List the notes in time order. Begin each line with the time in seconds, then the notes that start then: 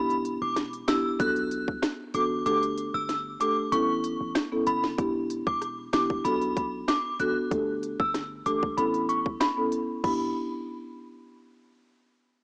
Already playing: E1 B3 D4 E4 G4
0.10 closed hi-hat
0.25 closed hi-hat
0.42 E1 D6
0.56 cross-stick, snare, closed hi-hat
0.73 closed hi-hat
0.88 B3 D4 E4 G4 E6, cross-stick, snare, closed hi-hat
1.19 B1 B3 D4 F#4 A4 F#6, kick, closed hi-hat
1.36 closed hi-hat
1.51 closed hi-hat
1.68 kick
1.82 cross-stick, snare, closed hi-hat
2.14 A1 B3 D4 F#4 A4 D6, closed hi-hat
2.46 G1 A3 D4 G4 A4 D6, closed hi-hat
2.63 closed hi-hat
2.78 closed hi-hat
2.94 G1 E6
3.09 snare, closed hi-hat
3.40 A3 D4 G4 A4 D6, closed hi-hat
3.72 A1 B3 C#4 E4 A4 C#6, closed hi-hat
4.04 closed hi-hat
4.21 A1
4.35 cross-stick, snare, closed hi-hat
4.52 B3 C#4 E4 A4
4.67 F#1 B5, closed hi-hat
4.84 snare
4.98 E1 B3 D4 E4 G4, kick, closed hi-hat
5.30 closed hi-hat
5.47 E1 D6, kick
5.62 cross-stick, closed hi-hat
5.93 G1 B3 D4 E4 G4 D6, cross-stick, snare, closed hi-hat
6.10 kick
6.24 B1 B3 D4 F#4 A4 B5, closed hi-hat
6.41 closed hi-hat
6.57 kick, closed hi-hat
6.88 D6, cross-stick, snare, closed hi-hat
7.19 A1 B3 D4 F#4 A4 F#6, closed hi-hat
7.51 G1 A3 D4 G4 A4, kick, closed hi-hat
7.83 closed hi-hat
8.00 G1 E6, kick
8.14 cross-stick, snare, closed hi-hat
8.46 A1 A3 D4 G4 A4 D6, closed hi-hat
8.63 kick
8.77 A1 B3 C#4 E4 A4 B5, closed hi-hat
8.94 closed hi-hat
9.09 C#6, closed hi-hat
9.26 kick
9.40 B5, cross-stick, snare, closed hi-hat
9.57 B3 C#4 E4 A4
9.72 closed hi-hat
10.04 E1 B3 D4 E4 G4 B5, kick, crash